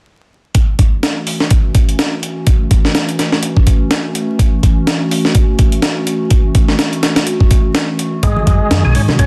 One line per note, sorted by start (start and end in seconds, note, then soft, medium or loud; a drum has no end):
0.55 8.19 E3 medium
0.55 8.19 A3 medium
0.55 8.19 C#4 medium
0.55 9.27 F#4 medium
0.55 kick loud
0.55 closed hi-hat medium
0.79 kick medium
0.79 closed hi-hat medium
1.03 snare loud
1.03 closed hi-hat medium
1.27 open hi-hat medium
1.40 snare soft
1.50 kick loud
1.50 closed hi-hat medium
1.75 kick medium
1.75 closed hi-hat medium
1.89 closed hi-hat soft
1.99 snare loud
1.99 closed hi-hat medium
2.23 closed hi-hat medium
2.47 kick loud
2.47 closed hi-hat medium
2.71 kick medium
2.71 closed hi-hat medium
2.85 snare soft
2.95 snare loud
2.95 closed hi-hat medium
3.09 closed hi-hat soft
3.19 snare soft
3.19 closed hi-hat medium
3.32 snare soft
3.43 closed hi-hat medium
3.57 kick medium
3.67 kick medium
3.67 closed hi-hat medium
3.91 snare loud
3.91 closed hi-hat medium
4.15 closed hi-hat medium
4.39 kick loud
4.39 closed hi-hat medium
4.63 kick medium
4.63 closed hi-hat medium
4.87 snare loud
4.87 closed hi-hat medium
5.11 open hi-hat medium
5.25 snare soft
5.35 kick loud
5.35 closed hi-hat medium
5.59 kick medium
5.59 closed hi-hat medium
5.72 closed hi-hat soft
5.82 snare loud
5.82 closed hi-hat medium
6.07 closed hi-hat medium
6.31 kick loud
6.31 closed hi-hat medium
6.55 kick medium
6.55 closed hi-hat medium
6.68 snare soft
6.79 snare loud
6.79 closed hi-hat medium
6.93 closed hi-hat soft
7.03 snare medium
7.03 closed hi-hat medium
7.16 snare loud
7.16 closed hi-hat medium
7.27 closed hi-hat medium
7.40 kick medium
7.51 kick medium
7.51 closed hi-hat medium
7.75 snare loud
7.75 closed hi-hat medium
7.99 closed hi-hat medium
8.23 8.33 G#1 medium
8.23 9.27 D#3 medium
8.23 8.46 G#3 medium
8.23 9.27 G#3 medium
8.23 9.27 B3 medium
8.23 kick loud
8.23 closed hi-hat medium
8.36 high conga medium
8.47 8.57 F#2 medium
8.47 8.83 G#3 medium
8.47 kick medium
8.47 closed hi-hat medium
8.71 8.81 F#2 medium
8.71 snare loud
8.71 closed hi-hat medium
8.71 high conga medium
8.85 8.96 B1 medium
8.85 8.94 G#4 medium
8.95 9.05 G#2 medium
8.95 9.02 C#4 medium
8.95 open hi-hat medium
9.08 snare soft
9.08 high conga medium
9.08 low conga medium
9.19 9.27 G#1 medium
9.19 9.27 C#4 medium
9.19 kick loud
9.19 closed hi-hat medium